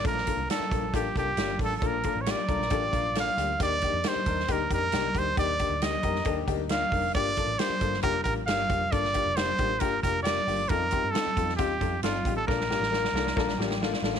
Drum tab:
HH |x-x-x-x-x-x-x-o-|x-x-x-x-x-x-x-x-|x-x-x-x-x-x-x-x-|x-x-x-x-x-x-x-o-|
SD |-o--o-------o---|----o--o----o---|----o--o----o---|----o--o----o---|
BD |o-o---o-o-o---o-|o-o---o-o-o-----|o-o---o-o-o---o-|o-o---o-o-o---o-|

HH |x-x-x-x-x-x-x-x-|x-x-x-x-x-x-x-o-|x-x-x-x-x-x-x-x-|----------------|
SD |----o--o----o---|-o--o-------o---|----o--o----o---|oooooooooooooooo|
BD |o-o---o-o-o---o-|o-o---o-o-o-----|o-o---o-o-o---o-|o-------o-------|